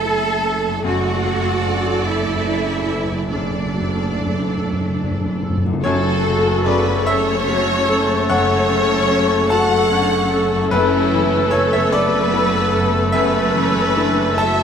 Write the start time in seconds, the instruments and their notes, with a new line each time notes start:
Already playing: double bass section F#1, grand piano F#2 C#3 E4 A4, viola section A3 A4, cello section A4, violin section E5 A5
0.05 grand piano E4
0.45 grand piano A4
0.67 harp F#2
0.72 harp A3
0.76 harp D4
0.81 double bass section F#1, timpani F#2, grand piano F#2, harp A4, violin section F#5
0.85 viola section A3 A4, cello section F#4, violin section D5
0.92 timpani F#2
1.22 timpani F#2, grand piano F#3
1.29 timpani F#2
1.36 timpani F#2
1.44 timpani F#2
1.51 timpani F#2
1.67 timpani F#2, grand piano D4
1.74 timpani F#2
1.82 timpani F#2
1.89 timpani F#2
1.97 timpani F#2
2.04 timpani F#2, cello section E4, violin section E5
2.08 grand piano A4
2.12 timpani F#2
2.19 timpani F#2
2.27 timpani F#2
2.35 timpani F#2
2.42 timpani F#2
2.48 timpani F#2, grand piano D4
2.58 timpani F#2
2.66 timpani F#2
2.74 timpani F#2
2.82 timpani F#2
2.89 timpani F#2, grand piano A4
2.97 timpani F#2
3.05 timpani F#2
3.11 timpani F#2
3.20 timpani F#2
3.27 timpani F#2
3.32 grand piano F#2, timpani F#2, viola section A3 A4, cello section D4, violin section D5
3.42 timpani F#2
3.50 timpani F#2
3.57 timpani F#2
3.65 timpani F#2
3.73 timpani F#2, grand piano F#3
3.81 timpani F#2
3.88 timpani F#2
3.97 timpani F#2
4.03 timpani F#2
4.11 timpani F#2
4.17 timpani F#2, grand piano D4
4.27 timpani F#2
4.34 timpani F#2
4.41 timpani F#2
4.49 timpani F#2
4.58 timpani F#2, grand piano A4
4.65 timpani F#2
4.73 timpani F#2
4.80 timpani F#2
4.89 timpani F#2
4.96 timpani F#2
5.01 timpani F#2, grand piano D4
5.11 timpani F#2
5.18 timpani F#2
5.26 timpani F#2
5.35 timpani F#2
5.42 timpani F#2, grand piano A4
5.50 timpani F#2
5.57 timpani F#2
5.66 timpani F#2, harp F#2
5.70 timpani F#2, harp A3
5.75 harp C#3
5.80 harp A4, violin section A4
5.84 double bass section F#1, cello section F#2, grand piano F#2 C#5, clarinet A3, viola section F#4 A4, french horn section A4, oboe A4, flute C#6
6.26 grand piano C#3
6.65 grand piano C#3 D5, violin section B4
7.06 viola section C#4 A4, french horn section A4, grand piano A4 E5, violin section C#5
7.47 grand piano C#4, french horn section F#4, viola section F#4
7.87 french horn section A4, viola section A4, grand piano A4
8.29 grand piano F#2 F#5, viola section C#4, french horn section A4, violin section C#5
8.70 grand piano C#3
9.11 grand piano C#4
9.50 viola section F#4 A4, grand piano A4 A5, violin section F#5
9.91 viola section D3, grand piano C#4
10.31 viola section C#4, grand piano A4
10.54 harp F#2
10.58 harp A3
10.63 harp E4
10.67 violin section E4, harp A4, french horn section B4, grand piano B4
10.72 double bass section F#1, grand piano F#2, timpani F#2, cello section F#2, clarinet A3, violin section E4, oboe A4, viola section A4, flute E6
11.12 grand piano E3
11.51 grand piano E4 C#5, violin section A4
11.72 violin section C#5, grand piano E5
11.92 viola section B3, french horn section A4, grand piano A4 D5, violin section B4
12.32 grand piano E4, french horn section B4
12.72 french horn section A4, grand piano A4
13.12 grand piano F#2 E5, viola section B3 B4, violin section B4
13.55 grand piano E3, viola section C#4
13.96 viola section D4, grand piano E4
14.37 viola section E4 A4, french horn section F#4, grand piano A4 A5, violin section E5